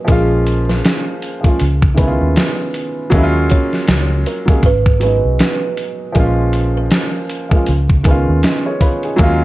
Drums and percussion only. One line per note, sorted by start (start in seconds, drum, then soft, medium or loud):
0.08 kick loud
0.08 closed hi-hat medium
0.47 closed hi-hat medium
0.69 snare soft
0.85 snare loud
0.85 closed hi-hat medium
1.22 closed hi-hat medium
1.44 kick medium
1.44 closed hi-hat soft
1.60 closed hi-hat medium
1.82 kick medium
1.98 kick medium
1.98 closed hi-hat medium
2.36 snare loud
2.36 closed hi-hat medium
2.74 closed hi-hat medium
3.12 kick loud
3.12 closed hi-hat medium
3.50 kick medium
3.50 closed hi-hat medium
3.73 snare soft
3.88 snare loud
3.88 closed hi-hat medium
4.26 closed hi-hat medium
4.48 kick medium
4.48 closed hi-hat soft
4.63 kick loud
4.63 closed hi-hat medium
4.86 kick medium
5.01 closed hi-hat medium
5.39 snare loud
5.39 closed hi-hat medium
5.77 closed hi-hat medium
6.15 kick loud
6.15 closed hi-hat medium
6.53 closed hi-hat medium
6.91 snare loud
6.91 closed hi-hat medium
7.30 closed hi-hat medium
7.51 kick medium
7.66 closed hi-hat medium
7.89 kick loud
8.04 kick medium
8.04 closed hi-hat medium
8.43 snare loud
8.43 closed hi-hat medium
8.81 kick medium
8.81 closed hi-hat medium
9.03 closed hi-hat soft
9.18 kick loud
9.18 closed hi-hat medium